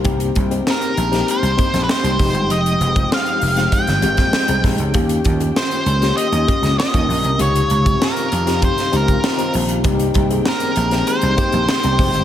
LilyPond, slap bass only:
\new Staff \with { instrumentName = "Slap bass" } { \clef bass \time 4/4 \key aes \major \tempo 4 = 98 c,8 c,8 r8 bes,,8 r16 c,16 r16 bes,,16 r16 c,16 f,,16 g,,16 | f,,8 f,,8 r8 f,,8 r16 g,,16 aes,,16 bes,,16 r16 c,16 bes,,16 des,16 | ees,8 ees,8 r8 des,8 r16 ees,16 r16 des,16 r16 ees,16 bes,,16 c,16 | des,8 des,8 r8 f,8. r16 des,8 r8 bes,,8 |
c,8 c,8 r8 bes,,8 r16 c,16 r16 bes,,16 r16 c,16 f,,16 g,,16 | }